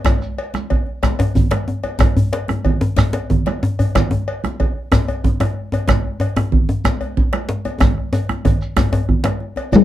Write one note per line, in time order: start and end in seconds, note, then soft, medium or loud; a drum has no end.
0.05 bombo rim loud
0.05 bombo low medium
0.05 cowbell medium
0.05 djembe slap medium
0.05 djembe tone medium
0.05 high conga medium
0.05 djembe bass medium
0.05 low conga medium
0.05 shekere medium
0.22 bombo rim soft
0.22 shekere soft
0.38 cowbell medium
0.38 high conga soft
0.54 bombo rim medium
0.54 djembe slap medium
0.54 djembe tone soft
0.54 high conga medium
0.54 shekere soft
0.70 bombo rim soft
0.70 bombo low medium
0.70 cowbell soft
0.70 low conga medium
0.86 djembe slap soft
1.03 bombo rim medium
1.03 cowbell soft
1.03 djembe slap medium
1.03 high conga medium
1.03 djembe bass medium
1.03 shekere medium
1.19 bombo rim soft
1.19 cowbell soft
1.19 djembe slap soft
1.19 djembe tone medium
1.19 djembe tone loud
1.35 bombo low medium
1.35 djembe slap soft
1.35 djembe bass medium
1.35 low conga medium
1.35 shekere soft
1.51 bombo rim medium
1.51 cowbell medium
1.51 djembe slap medium
1.51 high conga medium
1.68 djembe tone medium
1.83 cowbell medium
1.83 djembe slap soft
1.83 djembe tone soft
1.83 high conga soft
1.99 bombo rim medium
1.99 bombo low loud
1.99 cowbell medium
1.99 djembe slap medium
1.99 djembe tone loud
1.99 high conga medium
1.99 djembe bass medium
1.99 low conga medium
1.99 shekere medium
2.17 high conga soft
2.17 djembe bass medium
2.33 cowbell medium
2.33 djembe slap medium
2.48 bombo rim medium
2.48 djembe slap soft
2.48 djembe tone soft
2.48 djembe tone medium
2.48 high conga medium
2.65 bombo low medium
2.65 cowbell soft
2.65 low conga medium
2.81 djembe tone loud
2.96 bombo rim medium
2.96 cowbell medium
2.96 djembe slap medium
2.96 high conga medium
2.96 djembe bass medium
2.96 shekere medium
3.13 cowbell soft
3.13 djembe slap medium
3.13 djembe tone medium
3.30 bombo low medium
3.30 djembe tone medium
3.30 low conga medium
3.46 bombo rim medium
3.46 cowbell soft
3.46 djembe slap medium
3.46 high conga medium
3.63 djembe tone loud
3.79 cowbell soft
3.79 djembe slap soft
3.79 djembe tone medium
3.79 high conga soft
3.79 djembe bass medium
3.95 bombo rim medium
3.95 bombo low medium
3.95 cowbell medium
3.95 djembe slap medium
3.95 high conga medium
3.95 djembe bass medium
3.95 low conga medium
3.95 shekere medium
4.11 djembe tone medium
4.11 high conga soft
4.28 cowbell soft
4.44 bombo rim medium
4.44 djembe slap medium
4.44 high conga medium
4.44 djembe tone medium
4.60 bombo low medium
4.60 cowbell soft
4.60 low conga medium
4.92 bombo rim medium
4.92 cowbell soft
4.92 djembe slap medium
4.92 djembe tone loud
4.92 high conga medium
4.92 djembe bass medium
4.92 shekere medium
5.08 cowbell soft
5.08 djembe tone medium
5.24 bombo low medium
5.24 djembe tone medium
5.24 low conga medium
5.40 bombo rim medium
5.40 cowbell soft
5.40 djembe slap medium
5.40 djembe tone loud
5.40 high conga medium
5.72 cowbell soft
5.72 djembe slap soft
5.72 djembe tone medium
5.72 high conga soft
5.72 djembe tone medium
5.88 bombo rim loud
5.88 bombo low loud
5.88 cowbell soft
5.88 djembe slap medium
5.88 djembe tone loud
5.88 high conga medium
5.88 djembe bass medium
5.88 low conga medium
5.88 shekere medium
6.05 high conga soft
6.20 cowbell soft
6.20 djembe tone medium
6.36 bombo rim medium
6.36 djembe slap medium
6.36 djembe tone medium
6.36 djembe tone loud
6.36 high conga medium
6.52 bombo low loud
6.52 low conga medium
6.69 djembe tone medium
6.84 bombo rim medium
6.84 cowbell soft
6.84 djembe slap medium
6.84 high conga medium
6.84 djembe bass medium
6.84 shekere medium
7.01 cowbell soft
7.01 djembe tone medium
7.17 bombo low loud
7.17 low conga medium
7.33 bombo rim medium
7.33 cowbell soft
7.33 djembe slap medium
7.33 high conga medium
7.49 djembe slap medium
7.65 cowbell soft
7.65 djembe slap soft
7.65 djembe tone medium
7.65 high conga soft
7.80 bombo rim loud
7.80 bombo low loud
7.80 cowbell soft
7.80 djembe slap medium
7.80 djembe tone medium
7.80 high conga medium
7.80 djembe bass medium
7.80 low conga medium
7.80 shekere medium
7.98 bombo rim soft
8.13 bombo rim soft
8.13 cowbell soft
8.13 djembe tone loud
8.13 shekere soft
8.29 bombo rim medium
8.29 djembe slap medium
8.29 high conga medium
8.29 djembe tone medium
8.45 bombo rim soft
8.45 bombo low loud
8.45 cowbell soft
8.45 djembe tone loud
8.45 low conga medium
8.45 shekere soft
8.61 bombo rim soft
8.61 djembe slap soft
8.61 shekere soft
8.77 bombo rim loud
8.77 cowbell soft
8.77 djembe slap medium
8.77 high conga medium
8.77 djembe tone loud
8.77 djembe bass medium
8.77 shekere medium
8.92 cowbell soft
8.92 djembe tone medium
8.92 djembe tone loud
9.09 bombo rim soft
9.09 bombo low medium
9.09 high conga soft
9.09 low conga medium
9.24 bombo rim medium
9.24 cowbell soft
9.24 djembe slap loud
9.24 djembe slap medium
9.24 high conga medium
9.40 djembe slap soft
9.40 high conga soft
9.56 bombo rim soft
9.56 cowbell soft
9.56 djembe tone medium
9.72 9.84 G3 loud
9.72 bombo low medium
9.72 cowbell medium
9.72 djembe slap soft
9.72 high conga medium
9.72 djembe bass medium
9.72 low conga medium
9.72 shekere medium